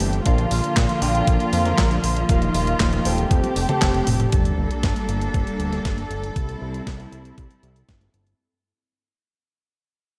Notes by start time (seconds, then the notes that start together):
Already playing: E3 A3 C4 G4
0.00 G1, open hi-hat
0.13 closed hi-hat
0.26 A#1 D3 F3 A#3 D4 F4 A#4 F5, kick, closed hi-hat
0.38 closed hi-hat
0.51 A#1, open hi-hat
0.64 closed hi-hat
0.77 A#1, kick, snare, clap, closed hi-hat
0.89 closed hi-hat
1.02 A#1 D4 F4 A#4 G5, open hi-hat
1.15 closed hi-hat
1.27 A#1, kick, closed hi-hat
1.40 closed hi-hat
1.53 F2, open hi-hat
1.66 D4 F4 A#4 A#5, snare, closed hi-hat
1.78 A#1, kick, snare, clap, closed hi-hat
1.91 closed hi-hat
2.04 A#1, open hi-hat
2.17 closed hi-hat
2.29 D#1 D#3 D#4 F4 A#4 F5, kick, closed hi-hat
2.42 closed hi-hat
2.54 D#1, open hi-hat
2.67 closed hi-hat
2.80 D#1, kick, snare, clap, closed hi-hat
2.93 closed hi-hat
3.05 D#1 C4 G4 A4 G5, open hi-hat
3.18 closed hi-hat
3.31 F1 A3 C4 G4, kick, closed hi-hat, high tom
3.44 closed hi-hat, high tom
3.56 F1, open hi-hat
3.69 C4 G4 A4 A5, closed hi-hat, mid tom
3.82 F1, kick, snare, clap, closed hi-hat, mid tom
3.94 closed hi-hat
4.07 F1, mid tom, open hi-hat
4.20 closed hi-hat, mid tom
4.32 G1 G3 A#3 D4 A4, kick, closed hi-hat, sub drop
4.45 closed hi-hat
4.58 G1
4.71 closed hi-hat
4.83 G1, kick, snare, closed hi-hat
4.96 closed hi-hat
5.09 G1, closed hi-hat
5.21 closed hi-hat
5.34 G1, kick, closed hi-hat
5.47 closed hi-hat
5.59 D2, closed hi-hat
5.73 snare, closed hi-hat
5.85 G1, kick, snare, closed hi-hat
5.98 closed hi-hat
6.11 G1, closed hi-hat
6.24 closed hi-hat
6.36 C2 G3 C4 E4, kick, closed hi-hat
6.49 closed hi-hat
6.61 C2
6.74 closed hi-hat
6.87 C2, kick, snare, closed hi-hat
7.00 closed hi-hat
7.12 C2, closed hi-hat
7.25 closed hi-hat
7.38 C2, kick, closed hi-hat
7.51 closed hi-hat
7.63 C2, closed hi-hat
7.76 closed hi-hat
7.89 G1, kick, snare, closed hi-hat
8.01 closed hi-hat
8.14 G1, closed hi-hat
8.27 closed hi-hat